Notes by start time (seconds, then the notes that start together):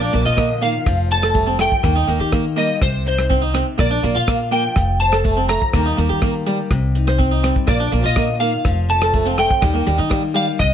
Already playing: A#2 F3 A#3 A#4 D5
0.01 D4
0.13 A#1 A#3, muted steel-string acoustic guitar stroke, closed hi-hat
0.25 A#2 F4 D#5
0.37 D3 A#3, kick, cross-stick
0.62 D#3 A#3 F5, closed hi-hat
0.86 F1 F3, kick, cross-stick
1.11 A4 A5, closed hi-hat
1.23 A4, cross-stick
1.34 G3 A3, kick
1.47 C4
1.59 F3 A3 G5, cross-stick, closed hi-hat
1.72 kick
1.83 D#2 D#3 A#3, kick, cross-stick
1.96 D#4
2.08 D#2 A#3 D#4, closed hi-hat
2.20 D#3 G4
2.32 A#3, kick, cross-stick
2.56 G3 A#3 D#5, closed hi-hat
2.82 C2 C3 C5, kick, cross-stick
3.06 D#4 C5, closed hi-hat
3.19 cross-stick
3.30 D3 C4, kick
3.42 D#4
3.54 C3 C4, cross-stick, closed hi-hat
3.78 A#1 A#2 A#3 D5, kick, cross-stick
3.91 D4
4.03 A#1 A#3 F4, closed hi-hat
4.15 A#2 F4 F5
4.28 A#3 D4, kick, cross-stick
4.51 F3 A#3 G5, closed hi-hat
4.76 F1 F3, kick, cross-stick
5.00 C5 A5, closed hi-hat
5.12 A4, cross-stick
5.24 G3 A3, kick
5.37 C4
5.48 F3 A3 A#5, cross-stick, closed hi-hat
5.62 kick
5.74 D#2 D#3 G3 A#3 G4 A#4, kick, cross-stick
5.86 D#4
5.97 D#2 A#3 G4, closed hi-hat
6.09 D#3 G4
6.22 A#3, kick, cross-stick
6.46 G3, closed hi-hat
6.71 C2 C3, kick, cross-stick
6.95 D#4, closed hi-hat
7.07 C5, cross-stick
7.19 C4, kick
7.31 D#4
7.43 G3 C4, cross-stick, closed hi-hat
7.56 kick
7.67 A#1 A#2 A#3 D5, kick, cross-stick
7.80 D4
7.92 A#1 A#3 F4, closed hi-hat
8.04 A#2 F4 D#5
8.16 D3 A#3, kick, cross-stick
8.40 D#3 A#3 F5, closed hi-hat
8.65 F1 F3, kick, cross-stick
8.90 A4 A5, closed hi-hat
9.02 A4, cross-stick
9.14 A3 D4, kick
9.26 C4 F4
9.38 A3 C4 G5, cross-stick, closed hi-hat
9.51 kick
9.62 D#2 D#3 G3, kick, cross-stick
9.74 A#3
9.86 D#2 G3 D#4, closed hi-hat
9.98 D#3 D#4
10.10 G3 A#3, kick, cross-stick
10.34 G3 F5, closed hi-hat
10.59 C2 C3 D#5, kick, cross-stick